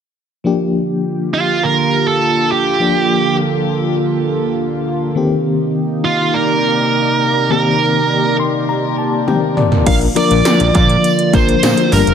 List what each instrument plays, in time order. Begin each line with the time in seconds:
0.44 analog synth pad D3 A#3 F4 G4, fm electric piano F3 A#3 D4 G4
1.34 lead electric guitar F4
1.63 analog polysynth D3 A#3 F4, lead electric guitar A#4
2.08 lead electric guitar A4
2.52 lead electric guitar G4
2.79 fm electric piano F3 A#3 D4 G4, analog synth pad A4
5.15 analog synth pad C3 D#4 G4, fm electric piano D#3 A#3 C4 G4
6.05 lead electric guitar F4
6.33 analog polysynth A#3 G4 D5, lead electric guitar A#4
7.50 fm electric piano D#3 A#3 C4 G4, lead electric guitar A#4
8.39 fm electric piano C6
8.69 fm electric piano A#5
8.98 fm electric piano A5
9.27 fm electric piano D#3 A#3 C4 G4 G5, high tom
9.57 fm electric piano D5, mid tom
9.72 floor tom
9.86 analog synth bass A#1, analog synth pad D3 F3 A#3 F4, fm electric piano F3 A#3 D4 A#4, lead electric guitar F5, kick, closed hi-hat, crash, tambourine
10.01 closed hi-hat
10.15 fm electric piano F3 A#3 D4 A#4, lead electric guitar D5, closed hi-hat, tambourine
10.31 analog synth bass A#1, closed hi-hat
10.45 snare, closed hi-hat, tambourine
10.60 analog synth bass A#1, closed hi-hat
10.75 analog synth bass A#2, lead electric guitar D5, kick, closed hi-hat, tambourine
10.89 closed hi-hat
11.04 closed hi-hat, tambourine
11.19 closed hi-hat
11.33 analog synth bass A#1, fm electric piano F3 A#3 D4 A#4, lead electric guitar C5, kick, closed hi-hat, tambourine
11.49 closed hi-hat
11.63 analog synth bass A#2, snare, closed hi-hat, tambourine
11.77 closed hi-hat
11.92 analog synth bass G1, fm electric piano G3 A#3 D4 A#4, analog synth pad G3 G4, lead electric guitar A#4, open hi-hat, tambourine
12.07 analog synth bass F1, closed hi-hat